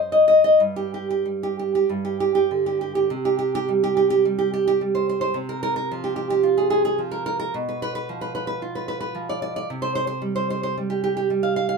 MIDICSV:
0, 0, Header, 1, 2, 480
1, 0, Start_track
1, 0, Tempo, 1273885
1, 231, Time_signature, 2, 2, 24, 8
1, 708, Tempo, 1232033
1, 1188, Tempo, 1136364
1, 1668, Tempo, 1098901
1, 3108, Tempo, 1069519
1, 5007, End_track
2, 0, Start_track
2, 0, Title_t, "Nylon-string guitar"
2, 0, Program_c, 0, 24
2, 0, Note_on_c, 0, 42, 73
2, 0, Note_on_c, 0, 72, 52
2, 46, Note_on_c, 0, 75, 76
2, 100, Note_off_c, 0, 75, 0
2, 105, Note_on_c, 0, 75, 80
2, 162, Note_off_c, 0, 75, 0
2, 167, Note_on_c, 0, 75, 88
2, 217, Note_off_c, 0, 42, 0
2, 227, Note_on_c, 0, 43, 65
2, 230, Note_off_c, 0, 75, 0
2, 232, Note_off_c, 0, 72, 0
2, 288, Note_on_c, 0, 67, 71
2, 350, Note_off_c, 0, 67, 0
2, 354, Note_on_c, 0, 67, 78
2, 412, Note_off_c, 0, 67, 0
2, 416, Note_on_c, 0, 67, 76
2, 473, Note_on_c, 0, 55, 48
2, 475, Note_off_c, 0, 67, 0
2, 540, Note_on_c, 0, 67, 73
2, 595, Note_off_c, 0, 67, 0
2, 601, Note_on_c, 0, 67, 67
2, 654, Note_off_c, 0, 67, 0
2, 660, Note_on_c, 0, 67, 80
2, 691, Note_off_c, 0, 43, 0
2, 708, Note_off_c, 0, 55, 0
2, 713, Note_off_c, 0, 67, 0
2, 714, Note_on_c, 0, 43, 63
2, 774, Note_on_c, 0, 67, 67
2, 830, Note_off_c, 0, 67, 0
2, 834, Note_on_c, 0, 67, 76
2, 887, Note_off_c, 0, 67, 0
2, 891, Note_on_c, 0, 67, 79
2, 952, Note_off_c, 0, 67, 0
2, 954, Note_on_c, 0, 50, 44
2, 1013, Note_on_c, 0, 67, 63
2, 1066, Note_off_c, 0, 67, 0
2, 1071, Note_on_c, 0, 67, 70
2, 1121, Note_off_c, 0, 67, 0
2, 1126, Note_on_c, 0, 67, 74
2, 1177, Note_off_c, 0, 43, 0
2, 1185, Note_on_c, 0, 48, 67
2, 1186, Note_off_c, 0, 67, 0
2, 1189, Note_off_c, 0, 50, 0
2, 1248, Note_on_c, 0, 67, 78
2, 1299, Note_off_c, 0, 67, 0
2, 1304, Note_on_c, 0, 67, 91
2, 1368, Note_off_c, 0, 67, 0
2, 1373, Note_on_c, 0, 67, 101
2, 1430, Note_on_c, 0, 55, 63
2, 1432, Note_off_c, 0, 67, 0
2, 1494, Note_on_c, 0, 67, 97
2, 1545, Note_off_c, 0, 67, 0
2, 1550, Note_on_c, 0, 67, 94
2, 1602, Note_off_c, 0, 67, 0
2, 1607, Note_on_c, 0, 67, 105
2, 1666, Note_off_c, 0, 55, 0
2, 1667, Note_off_c, 0, 67, 0
2, 1671, Note_on_c, 0, 55, 59
2, 1728, Note_on_c, 0, 67, 84
2, 1789, Note_off_c, 0, 67, 0
2, 1794, Note_on_c, 0, 67, 91
2, 1850, Note_off_c, 0, 67, 0
2, 1855, Note_on_c, 0, 67, 101
2, 1909, Note_off_c, 0, 55, 0
2, 1914, Note_off_c, 0, 67, 0
2, 1914, Note_on_c, 0, 55, 55
2, 1974, Note_on_c, 0, 72, 81
2, 2033, Note_off_c, 0, 72, 0
2, 2038, Note_on_c, 0, 72, 82
2, 2083, Note_off_c, 0, 72, 0
2, 2088, Note_on_c, 0, 72, 99
2, 2136, Note_off_c, 0, 48, 0
2, 2146, Note_on_c, 0, 48, 71
2, 2152, Note_off_c, 0, 72, 0
2, 2157, Note_off_c, 0, 55, 0
2, 2211, Note_on_c, 0, 70, 76
2, 2266, Note_off_c, 0, 70, 0
2, 2271, Note_on_c, 0, 70, 102
2, 2324, Note_off_c, 0, 70, 0
2, 2329, Note_on_c, 0, 70, 96
2, 2392, Note_off_c, 0, 70, 0
2, 2396, Note_on_c, 0, 53, 65
2, 2450, Note_on_c, 0, 67, 81
2, 2498, Note_off_c, 0, 67, 0
2, 2504, Note_on_c, 0, 67, 81
2, 2561, Note_off_c, 0, 67, 0
2, 2566, Note_on_c, 0, 67, 95
2, 2623, Note_on_c, 0, 65, 66
2, 2630, Note_off_c, 0, 67, 0
2, 2685, Note_on_c, 0, 68, 78
2, 2735, Note_off_c, 0, 68, 0
2, 2741, Note_on_c, 0, 68, 92
2, 2799, Note_off_c, 0, 68, 0
2, 2804, Note_on_c, 0, 68, 94
2, 2858, Note_off_c, 0, 53, 0
2, 2863, Note_on_c, 0, 53, 52
2, 2868, Note_off_c, 0, 68, 0
2, 2920, Note_on_c, 0, 70, 83
2, 2978, Note_off_c, 0, 70, 0
2, 2984, Note_on_c, 0, 70, 90
2, 3038, Note_off_c, 0, 70, 0
2, 3043, Note_on_c, 0, 70, 94
2, 3086, Note_off_c, 0, 48, 0
2, 3103, Note_off_c, 0, 65, 0
2, 3104, Note_off_c, 0, 53, 0
2, 3105, Note_off_c, 0, 70, 0
2, 3108, Note_on_c, 0, 47, 74
2, 3172, Note_on_c, 0, 71, 73
2, 3227, Note_off_c, 0, 71, 0
2, 3233, Note_on_c, 0, 71, 93
2, 3285, Note_off_c, 0, 71, 0
2, 3291, Note_on_c, 0, 71, 92
2, 3349, Note_off_c, 0, 71, 0
2, 3353, Note_on_c, 0, 53, 63
2, 3408, Note_on_c, 0, 71, 83
2, 3463, Note_off_c, 0, 71, 0
2, 3469, Note_on_c, 0, 71, 80
2, 3519, Note_off_c, 0, 71, 0
2, 3524, Note_on_c, 0, 71, 90
2, 3586, Note_off_c, 0, 71, 0
2, 3591, Note_on_c, 0, 65, 59
2, 3651, Note_on_c, 0, 71, 74
2, 3703, Note_off_c, 0, 71, 0
2, 3708, Note_on_c, 0, 71, 91
2, 3758, Note_off_c, 0, 71, 0
2, 3764, Note_on_c, 0, 71, 89
2, 3822, Note_off_c, 0, 53, 0
2, 3826, Note_off_c, 0, 71, 0
2, 3827, Note_on_c, 0, 53, 55
2, 3893, Note_on_c, 0, 74, 84
2, 3945, Note_off_c, 0, 74, 0
2, 3950, Note_on_c, 0, 74, 85
2, 4007, Note_off_c, 0, 74, 0
2, 4013, Note_on_c, 0, 74, 98
2, 4046, Note_off_c, 0, 47, 0
2, 4064, Note_off_c, 0, 53, 0
2, 4066, Note_off_c, 0, 65, 0
2, 4068, Note_off_c, 0, 74, 0
2, 4076, Note_on_c, 0, 48, 72
2, 4129, Note_on_c, 0, 72, 92
2, 4184, Note_off_c, 0, 72, 0
2, 4189, Note_on_c, 0, 72, 103
2, 4238, Note_off_c, 0, 72, 0
2, 4243, Note_on_c, 0, 72, 101
2, 4302, Note_off_c, 0, 72, 0
2, 4307, Note_on_c, 0, 55, 58
2, 4370, Note_on_c, 0, 72, 87
2, 4426, Note_off_c, 0, 72, 0
2, 4437, Note_on_c, 0, 72, 92
2, 4490, Note_off_c, 0, 72, 0
2, 4495, Note_on_c, 0, 72, 96
2, 4549, Note_off_c, 0, 72, 0
2, 4553, Note_off_c, 0, 55, 0
2, 4558, Note_on_c, 0, 55, 55
2, 4614, Note_on_c, 0, 67, 86
2, 4670, Note_off_c, 0, 67, 0
2, 4676, Note_on_c, 0, 67, 94
2, 4729, Note_off_c, 0, 67, 0
2, 4734, Note_on_c, 0, 67, 97
2, 4789, Note_off_c, 0, 55, 0
2, 4790, Note_off_c, 0, 67, 0
2, 4795, Note_on_c, 0, 55, 59
2, 4852, Note_on_c, 0, 77, 83
2, 4906, Note_off_c, 0, 77, 0
2, 4912, Note_on_c, 0, 77, 90
2, 4963, Note_off_c, 0, 77, 0
2, 4968, Note_on_c, 0, 77, 99
2, 5007, Note_off_c, 0, 48, 0
2, 5007, Note_off_c, 0, 55, 0
2, 5007, Note_off_c, 0, 77, 0
2, 5007, End_track
0, 0, End_of_file